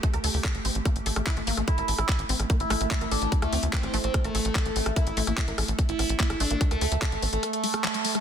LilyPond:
<<
  \new Staff \with { instrumentName = "Ambient pad" } { \time 4/4 \key a \phrygian \tempo 4 = 146 <a g'>1 | e'1~ | e'1 | a'1~ |
a'1 | }
  \new Staff \with { instrumentName = "Analog synth lead" } { \time 4/4 \key a \phrygian r1 | e'8 r16 e'8 r4 e'8 r16 e'16 r16 d'8 | r16 a8 r16 c'8 r16 c'16 r16 a4. r16 | e'8 r16 e'8 r4 e'8 r8. d'8 |
r16 a8 r16 a8 r16 a16 r16 a4. r16 | }
  \new Staff \with { instrumentName = "Synth arpeggio sound" } { \time 4/4 \key a \phrygian a16 bes'16 a'16 r8. c'16 r16 bes16 r16 a'16 a16 e'16 a16 bes16 a16 | a16 bes'16 a'16 r8. c'16 r16 bes16 r16 a16 bes16 a16 bes'16 a'16 r16 | r8 c'16 r16 bes16 r16 a16 bes16 a16 bes'16 a'16 r8. c'16 r16 | bes16 r16 a16 bes16 a16 bes'16 a'16 r8. c'16 r16 bes16 r16 a16 bes16 |
a16 bes'16 a'16 r8. c'16 r16 bes16 r16 a16 c'16 g16 a16 a16 a16 | }
  \new Staff \with { instrumentName = "Analog synth bass" } { \clef bass \time 4/4 \key a \phrygian r16 d,16 d,16 d,16 r16 a,,16 a,,16 a,,16 r16 a,,16 a,,16 a,,16 r16 a,,16 a,,16 a,,16 | r16 a,,16 a,,16 a,,16 r16 a,,16 a,,16 a,,16 r16 a,,16 a,,16 a,,16 r16 a,,16 a,,16 a,,16 | r16 d,16 d,16 d,16 r16 a,,16 a,,16 a,,16 r16 a,,16 a,,16 a,,16 r16 a,,16 a,,16 a,,16 | r16 a,,16 a,,16 a,,16 r16 a,,16 a,,16 a,,16 r16 a,,16 a,,16 a,,16 r16 a,,16 a,,16 a,,16 |
r16 d,16 d,16 d,16 r16 a,,16 a,,16 a,,16 r2 | }
  \new DrumStaff \with { instrumentName = "Drums" } \drummode { \time 4/4 <hh bd>16 <hh ss>16 hho16 hho16 <hc bd ss>16 hh16 hho16 hh16 <hh bd ss>16 hh16 hho16 <hh ss>16 <hc hh bd>16 hh16 hho16 <hh ss>16 | <hh bd ss>16 hh16 hho16 <hh ss>16 <hc hh bd>16 hh16 hho16 <hh ss>16 <hh bd>16 hh16 <hho ss>16 hh16 <hc hh bd>16 hh16 <hho ss>16 hh16 | <hh bd>16 <hh ss>16 hho16 hh16 <hc hh bd>16 <hh ss>16 hho16 hh16 <hh bd ss>16 hh16 hho16 hh16 <hc hh bd ss>16 hh16 hho16 <hh ss>16 | <hh bd>16 hh16 hho16 <hh ss>16 <hc hh bd>16 hh16 <hho ss>16 hh16 <hh bd>16 hh16 <hho ss>16 hh16 <hc hh bd>16 <hh ss>16 hho16 hh16 |
<hh bd>16 <hh ss>16 hho16 hh16 <hc hh bd ss>16 hh16 hho16 hh16 <hh ss>16 hh16 hho16 <hh ss>16 <hc hh>16 hh16 hho16 <hh ss>16 | }
>>